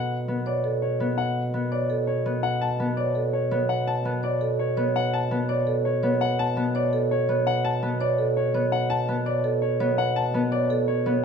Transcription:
0.00 11.25 B2 medium
0.00 0.27 B3 medium
0.00 0.16 F#5 medium
0.28 0.99 B3 medium
0.46 0.70 C#5 medium
0.46 0.70 D5 medium
0.64 0.88 A4 medium
0.82 1.05 C#5 medium
1.00 1.53 B3 medium
1.18 1.41 F#5 medium
1.54 2.25 B3 medium
1.72 1.95 C#5 medium
1.72 1.95 D5 medium
1.90 2.13 A4 medium
2.07 2.31 C#5 medium
2.26 2.78 B3 medium
2.43 2.67 F#5 medium
2.61 2.85 A5 medium
2.80 3.50 B3 medium
2.97 3.21 C#5 medium
2.97 3.21 D5 medium
3.15 3.39 A4 medium
3.33 3.57 C#5 medium
3.51 4.04 B3 medium
3.51 3.75 C#5 medium
3.69 3.93 F#5 medium
3.88 4.11 A5 medium
4.05 4.76 B3 medium
4.23 4.47 C#5 medium
4.23 4.47 D5 medium
4.41 4.65 A4 medium
4.59 4.83 C#5 medium
4.77 5.30 B3 medium
4.77 5.01 C#5 medium
4.96 5.19 F#5 medium
5.13 5.37 A5 medium
5.31 6.02 B3 medium
5.49 5.72 C#5 medium
5.49 5.73 D5 medium
5.67 5.90 A4 medium
5.85 6.08 C#5 medium
6.03 6.56 B3 medium
6.03 6.26 C#5 medium
6.21 6.44 F#5 medium
6.39 6.62 A5 medium
6.57 7.28 B3 medium
6.75 6.98 C#5 medium
6.75 6.99 D5 medium
6.93 7.16 A4 medium
7.11 7.34 C#5 medium
7.29 7.81 B3 medium
7.29 7.52 C#5 medium
7.47 7.70 F#5 medium
7.65 7.88 A5 medium
7.83 8.53 B3 medium
8.01 8.24 C#5 medium
8.01 8.24 D5 medium
8.18 8.42 A4 medium
8.37 8.60 C#5 medium
8.54 9.07 B3 medium
8.54 8.78 C#5 medium
8.72 8.96 F#5 medium
8.90 9.14 A5 medium
9.08 9.79 B3 medium
9.26 9.50 C#5 medium
9.26 9.50 D5 medium
9.44 9.68 A4 medium
9.62 9.86 C#5 medium
9.80 10.33 B3 medium
9.80 10.04 C#5 medium
9.98 10.22 F#5 medium
10.16 10.40 A5 medium
10.34 11.05 B3 medium
10.52 10.76 C#5 medium
10.52 10.75 D5 medium
10.70 10.94 A4 medium
10.88 11.11 C#5 medium
11.06 11.25 B3 medium
11.06 11.25 C#5 medium

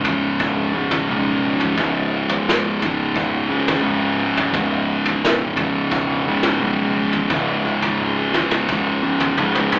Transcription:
0.00 0.15 E1 loud
0.00 0.77 C#2 medium
0.00 0.73 G#2 medium
0.00 0.74 C#3 medium
0.04 1.07 C#2 medium
0.04 1.07 G#2 medium
0.04 1.09 C#3 medium
0.04 floor tom loud
0.39 0.84 E1 medium
0.39 kick loud
0.39 floor tom medium
0.74 1.09 C#2 medium
0.74 1.08 G#2 medium
0.74 1.12 C#3 medium
0.91 floor tom medium
0.91 mid tom medium
1.09 1.53 B1 medium
1.09 1.77 C#2 medium
1.09 1.77 G#2 medium
1.09 1.80 C#3 medium
1.60 floor tom medium
1.77 2.22 C#1 loud
1.77 3.52 C#2 medium
1.77 3.48 G#2 medium
1.77 3.49 C#3 loud
1.77 kick loud
1.77 floor tom medium
2.29 floor tom medium
2.48 2.91 G#1 medium
2.48 snare medium
2.80 3.82 C#2 medium
2.80 3.83 G#2 medium
2.80 3.84 C#3 medium
2.80 floor tom loud
3.16 3.60 F#1 medium
3.16 kick loud
3.16 floor tom medium
3.49 3.83 C#2 medium
3.49 3.83 G#2 medium
3.49 3.86 C#3 medium
3.68 floor tom medium
3.68 mid tom medium
3.84 4.30 G#1 medium
3.84 4.51 C#2 medium
3.84 4.52 G#2 medium
3.84 4.54 C#3 medium
4.37 floor tom medium
4.51 4.98 C#1 loud
4.51 6.29 C#2 medium
4.51 6.24 G#2 loud
4.51 6.26 C#3 loud
4.51 kick loud
4.51 floor tom medium
5.05 floor tom loud
5.24 5.68 E1 loud
5.24 snare medium
5.57 6.60 C#2 medium
5.57 6.59 G#2 medium
5.57 6.62 C#3 medium
5.57 floor tom medium
5.91 6.36 E1 loud
5.91 kick loud
5.91 floor tom medium
6.26 6.61 C#2 medium
6.26 6.60 G#2 medium
6.26 6.64 C#3 medium
6.43 floor tom medium
6.43 mid tom medium
6.61 7.05 B1 medium
6.61 7.29 C#2 medium
6.61 7.29 G#2 medium
6.61 7.32 C#3 medium
7.12 floor tom medium
7.29 7.75 C#1 loud
7.29 9.01 C#2 medium
7.29 9.02 G#2 medium
7.29 9.02 C#3 loud
7.29 kick loud
7.29 floor tom loud
7.65 kick medium
7.82 floor tom medium
8.01 8.45 G#1 medium
8.32 9.35 C#2 medium
8.32 9.36 G#2 medium
8.32 9.35 C#3 medium
8.32 floor tom medium
8.32 mid tom medium
8.51 mid tom medium
8.68 9.13 F#1 medium
8.68 kick loud
8.68 floor tom medium
9.03 9.37 C#2 medium
9.03 9.37 G#2 medium
9.03 9.36 C#3 medium
9.20 floor tom medium
9.20 mid tom medium
9.37 9.79 G#1 medium
9.37 9.79 C#2 medium
9.37 9.79 G#2 medium
9.37 high tom medium
9.42 9.79 C#3 medium
9.55 mid tom medium
9.72 mid tom medium

